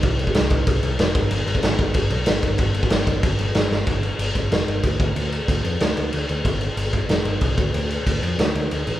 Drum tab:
CC |x-x-x-x-x-x-x-x-|x-x-x-x-x-x-x-x-|x-x-x-x-x-x-x---|x-x-x-x-x-x-x-x-|
SD |----o-------o---|----o-------o---|----o-------o-o-|--------o-------|
BD |o--o--o-o-----o-|---o--o-o-----o-|o--o--o-o-------|o-----o-----o-o-|

CC |x-x-x-x-x-x-x-x-|x-x-x-x-x-x-x-x-|x-x-x-x-x-x-x-x-|
SD |--------o-------|--------o-------|--------o-------|
BD |----o-----------|o-----o-----o-o-|----o-----------|